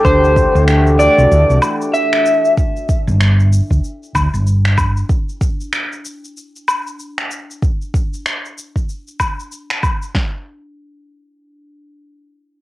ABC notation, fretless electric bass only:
X:1
M:4/4
L:1/16
Q:"Swing 16ths" 1/4=95
K:Dmix
V:1 name="Fretless electric bass" clef=bass
D,,2 z D,,3 z C,, D,, C,, z6 | z3 G,,,3 z D,, z2 D,, G,,,4 z | z16 | z16 |
z16 |]